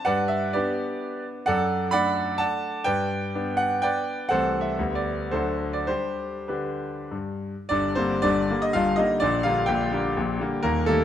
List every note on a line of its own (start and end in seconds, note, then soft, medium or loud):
0.05 0.53 G2 medium
0.05 0.28 B4 medium
0.05 0.28 D5 medium
0.05 0.29 F#5 loud
0.28 0.54 E5 medium
0.53 1.44 B3 medium
0.53 1.44 D4 medium
0.53 1.22 G4 medium
0.53 1.22 B4 medium
0.53 1.25 D5 medium
1.46 1.91 F#2 medium
1.46 1.89 A4 medium
1.46 1.89 D5 medium
1.46 1.91 F#5 loud
1.91 2.83 A3 medium
1.91 2.83 D4 medium
1.91 2.37 D5 medium
1.91 2.38 F#5 medium
1.91 2.40 B5 loud
2.38 2.82 D5 medium
2.38 2.82 F#5 medium
2.38 2.85 A5 loud
2.84 3.33 G2 medium
2.84 3.55 B4 medium
2.84 3.55 D5 medium
2.84 3.58 G5 loud
3.35 4.27 B3 medium
3.35 4.27 D4 medium
3.57 3.82 F#5 loud
3.82 4.27 B4 medium
3.82 4.27 D5 medium
3.82 4.30 G5 loud
4.29 4.77 C2 medium
4.29 4.75 E3 soft
4.29 4.75 A3 medium
4.29 4.75 C4 medium
4.29 4.59 A4 medium
4.29 4.60 C5 medium
4.29 4.61 F#5 loud
4.61 4.95 E5 medium
4.79 5.31 D2 medium
4.79 5.29 D3 soft
4.79 5.29 G3 medium
4.79 5.30 B3 soft
4.95 5.32 D5 medium
5.31 5.87 D2 medium
5.31 5.85 D3 medium
5.31 5.85 F#3 medium
5.31 5.85 D4 medium
5.31 5.71 F#4 medium
5.31 5.71 A4 medium
5.31 5.74 C5 medium
5.73 5.88 D5 medium
5.87 6.32 G3 medium
5.87 6.37 D4 soft
5.87 6.46 G4 medium
5.87 6.49 C5 medium
6.48 6.94 D3 medium
6.48 7.08 D4 soft
6.48 7.08 G4 soft
6.48 7.12 B4 medium
7.11 7.53 G2 medium
7.69 7.97 G1 medium
7.69 7.97 G2 medium
7.69 7.95 D4 medium
7.69 7.96 D5 loud
7.95 8.22 D3 medium
7.95 8.22 G3 medium
7.95 8.22 A#3 medium
7.95 8.22 C4 medium
7.95 8.23 C5 loud
8.22 8.50 G1 medium
8.22 8.50 G2 medium
8.22 8.59 D4 medium
8.22 8.62 D5 loud
8.50 8.72 D3 medium
8.50 8.73 G3 medium
8.50 8.73 A#3 medium
8.62 8.74 D#5 loud
8.73 8.98 G1 medium
8.73 8.98 G2 medium
8.73 8.96 F4 medium
8.73 8.98 F5 loud
8.96 9.19 D3 medium
8.96 9.19 G3 medium
8.96 9.20 A#3 medium
8.96 9.20 D#4 medium
8.96 9.20 D#5 loud
9.20 9.44 A#1 medium
9.20 9.44 A#2 medium
9.20 9.43 D4 medium
9.20 9.44 D5 loud
9.43 9.67 D3 medium
9.43 9.67 G3 medium
9.43 9.67 A#3 medium
9.43 9.67 F4 medium
9.43 9.68 F5 loud
9.66 9.92 A#1 medium
9.66 9.92 A#2 medium
9.66 10.60 G4 medium
9.66 10.62 G5 medium
9.92 10.14 D3 medium
9.92 10.14 G3 medium
9.92 10.14 A#3 medium
10.17 10.40 A#1 medium
10.17 10.40 A#2 medium
10.40 10.61 D3 medium
10.40 10.62 G3 medium
10.40 10.62 A#3 medium
10.63 10.86 D#1 medium
10.63 10.87 D#2 medium
10.63 10.85 A#3 medium
10.63 10.86 A#4 loud
10.86 11.04 D#3 medium
10.86 11.04 G3 medium
10.86 11.04 A3 medium
10.86 11.04 A#3 medium
10.86 11.04 A4 loud